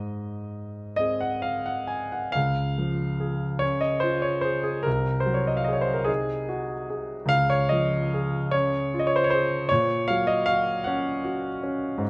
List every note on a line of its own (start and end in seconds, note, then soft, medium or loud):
0.00 2.32 G#2 soft
0.00 0.95 D#5 medium
0.96 2.32 C4 soft
0.96 2.32 G#4 soft
0.96 1.21 D#5 medium
1.20 1.44 F#5 medium
1.42 1.67 F5 medium
1.66 1.90 F#5 medium
1.87 2.12 G#5 medium
2.12 2.35 F#5 soft
2.32 4.82 C#2 soft
2.32 3.60 F5 medium
2.78 3.45 F3 soft
3.20 3.86 G#4 soft
3.59 4.28 C#4 soft
3.59 3.81 C#5 medium
3.81 4.02 D#5 medium
4.00 4.70 F4 soft
4.00 4.22 C5 medium
4.22 4.44 C#5 medium
4.41 4.62 G#4 soft
4.41 4.64 C5 medium
4.63 4.85 G#4 medium
4.83 7.27 C2 medium
4.83 5.21 A#4 medium
5.20 5.37 C5 medium
5.26 5.92 F#3 soft
5.34 5.48 C#5 medium
5.47 5.58 D#5 medium
5.57 5.67 F5 medium
5.64 6.03 G#4 soft
5.64 5.75 D#5 medium
5.73 5.84 C#5 medium
5.81 5.95 C5 medium
5.93 6.07 A#4 medium
6.04 6.74 D#4 soft
6.04 6.47 G#4 medium
6.49 7.14 F#4 soft
6.90 7.31 G#4 soft
7.26 9.63 C#2 soft
7.26 7.50 F5 loud
7.50 7.71 C#5 medium
7.69 8.37 F3 soft
7.69 8.52 D#5 medium
8.14 8.77 G#4 soft
8.51 9.17 C#4 soft
8.51 8.97 C#5 medium
8.94 9.56 F4 soft
8.99 9.07 D#5 medium
9.07 9.15 C#5 medium
9.16 9.24 C5 medium
9.24 9.32 C#5 medium
9.30 9.71 G#4 soft
9.30 9.69 C5 medium
9.69 11.98 A#2 medium
9.69 10.08 C#5 medium
10.08 10.72 F#3 soft
10.08 10.28 F5 medium
10.27 10.47 D#5 medium
10.46 11.09 F#4 soft
10.46 10.85 F5 medium
10.84 11.47 C#4 medium
10.84 12.00 F#5 medium
11.25 11.86 F#4 soft
11.63 12.02 C#4 soft
11.98 12.10 G#2 medium